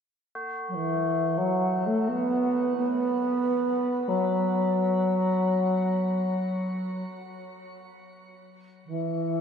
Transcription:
0, 0, Header, 1, 3, 480
1, 0, Start_track
1, 0, Tempo, 500000
1, 9031, End_track
2, 0, Start_track
2, 0, Title_t, "Tubular bells"
2, 0, Program_c, 0, 14
2, 338, Note_on_c, 0, 66, 37
2, 7615, Note_off_c, 0, 66, 0
2, 9031, End_track
3, 0, Start_track
3, 0, Title_t, "Bass flute"
3, 0, Program_c, 1, 73
3, 655, Note_on_c, 1, 54, 47
3, 710, Note_on_c, 1, 52, 64
3, 725, Note_off_c, 1, 54, 0
3, 1316, Note_on_c, 1, 54, 69
3, 1330, Note_off_c, 1, 52, 0
3, 1783, Note_on_c, 1, 57, 70
3, 1797, Note_off_c, 1, 54, 0
3, 1994, Note_on_c, 1, 59, 90
3, 2009, Note_off_c, 1, 57, 0
3, 2652, Note_off_c, 1, 59, 0
3, 2657, Note_on_c, 1, 59, 88
3, 3914, Note_on_c, 1, 54, 62
3, 3928, Note_off_c, 1, 59, 0
3, 6746, Note_off_c, 1, 54, 0
3, 8502, Note_on_c, 1, 52, 89
3, 9031, Note_off_c, 1, 52, 0
3, 9031, End_track
0, 0, End_of_file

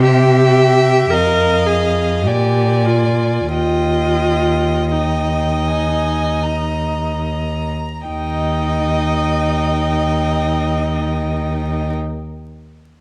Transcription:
0, 0, Header, 1, 5, 480
1, 0, Start_track
1, 0, Key_signature, -3, "major"
1, 0, Tempo, 1081081
1, 14, Time_signature, 3, 2, 24, 8
1, 494, Tempo, 1151631
1, 974, Tempo, 1263158
1, 1454, Tempo, 1401869
1, 1934, Tempo, 1507538
1, 2414, Tempo, 1657459
1, 4317, End_track
2, 0, Start_track
2, 0, Title_t, "Violin"
2, 0, Program_c, 0, 40
2, 22, Note_on_c, 0, 79, 58
2, 505, Note_on_c, 0, 77, 53
2, 511, Note_off_c, 0, 79, 0
2, 977, Note_on_c, 0, 80, 44
2, 982, Note_off_c, 0, 77, 0
2, 1453, Note_off_c, 0, 80, 0
2, 1455, Note_on_c, 0, 79, 40
2, 1925, Note_off_c, 0, 79, 0
2, 1929, Note_on_c, 0, 79, 41
2, 2174, Note_on_c, 0, 80, 46
2, 2179, Note_off_c, 0, 79, 0
2, 2412, Note_on_c, 0, 82, 44
2, 2417, Note_off_c, 0, 80, 0
2, 2645, Note_off_c, 0, 82, 0
2, 2647, Note_on_c, 0, 82, 42
2, 2882, Note_off_c, 0, 82, 0
2, 2892, Note_on_c, 0, 79, 49
2, 4013, Note_off_c, 0, 79, 0
2, 4317, End_track
3, 0, Start_track
3, 0, Title_t, "Violin"
3, 0, Program_c, 1, 40
3, 18, Note_on_c, 1, 76, 63
3, 504, Note_on_c, 1, 75, 56
3, 510, Note_off_c, 1, 76, 0
3, 977, Note_on_c, 1, 74, 44
3, 983, Note_off_c, 1, 75, 0
3, 1454, Note_off_c, 1, 74, 0
3, 1456, Note_on_c, 1, 75, 50
3, 1925, Note_off_c, 1, 75, 0
3, 1933, Note_on_c, 1, 75, 46
3, 2785, Note_off_c, 1, 75, 0
3, 2884, Note_on_c, 1, 75, 52
3, 4005, Note_off_c, 1, 75, 0
3, 4317, End_track
4, 0, Start_track
4, 0, Title_t, "Viola"
4, 0, Program_c, 2, 41
4, 10, Note_on_c, 2, 67, 81
4, 491, Note_on_c, 2, 70, 81
4, 498, Note_off_c, 2, 67, 0
4, 726, Note_on_c, 2, 68, 57
4, 732, Note_off_c, 2, 70, 0
4, 968, Note_off_c, 2, 68, 0
4, 970, Note_on_c, 2, 67, 64
4, 1200, Note_on_c, 2, 65, 55
4, 1206, Note_off_c, 2, 67, 0
4, 1447, Note_off_c, 2, 65, 0
4, 1449, Note_on_c, 2, 65, 66
4, 1929, Note_on_c, 2, 63, 48
4, 1934, Note_off_c, 2, 65, 0
4, 2644, Note_off_c, 2, 63, 0
4, 2888, Note_on_c, 2, 63, 58
4, 4009, Note_off_c, 2, 63, 0
4, 4317, End_track
5, 0, Start_track
5, 0, Title_t, "Cello"
5, 0, Program_c, 3, 42
5, 0, Note_on_c, 3, 48, 68
5, 492, Note_off_c, 3, 48, 0
5, 494, Note_on_c, 3, 41, 55
5, 976, Note_on_c, 3, 46, 52
5, 981, Note_off_c, 3, 41, 0
5, 1451, Note_off_c, 3, 46, 0
5, 1453, Note_on_c, 3, 39, 46
5, 2785, Note_off_c, 3, 39, 0
5, 2890, Note_on_c, 3, 39, 49
5, 4011, Note_off_c, 3, 39, 0
5, 4317, End_track
0, 0, End_of_file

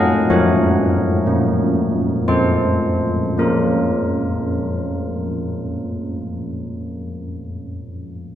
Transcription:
0, 0, Header, 1, 2, 480
1, 0, Start_track
1, 0, Key_signature, -5, "minor"
1, 0, Tempo, 956938
1, 147, Time_signature, 3, 2, 24, 8
1, 631, Tempo, 1029160
1, 1111, Tempo, 1125704
1, 3696, End_track
2, 0, Start_track
2, 0, Title_t, "Church bells"
2, 0, Program_c, 0, 14
2, 0, Note_on_c, 0, 54, 69
2, 0, Note_on_c, 0, 70, 54
2, 0, Note_on_c, 0, 75, 93
2, 54, Note_off_c, 0, 54, 0
2, 125, Note_off_c, 0, 70, 0
2, 136, Note_off_c, 0, 75, 0
2, 151, Note_on_c, 0, 73, 83
2, 152, Note_on_c, 0, 53, 77
2, 153, Note_on_c, 0, 70, 51
2, 537, Note_off_c, 0, 53, 0
2, 636, Note_on_c, 0, 58, 68
2, 1018, Note_off_c, 0, 58, 0
2, 1094, Note_off_c, 0, 73, 0
2, 1095, Note_off_c, 0, 70, 0
2, 1108, Note_on_c, 0, 72, 81
2, 1110, Note_on_c, 0, 53, 59
2, 1110, Note_on_c, 0, 69, 50
2, 1490, Note_off_c, 0, 53, 0
2, 1567, Note_off_c, 0, 72, 0
2, 1568, Note_off_c, 0, 69, 0
2, 1576, Note_on_c, 0, 58, 58
2, 1580, Note_on_c, 0, 65, 51
2, 1582, Note_on_c, 0, 70, 61
2, 3229, Note_off_c, 0, 58, 0
2, 3233, Note_off_c, 0, 65, 0
2, 3235, Note_off_c, 0, 70, 0
2, 3696, End_track
0, 0, End_of_file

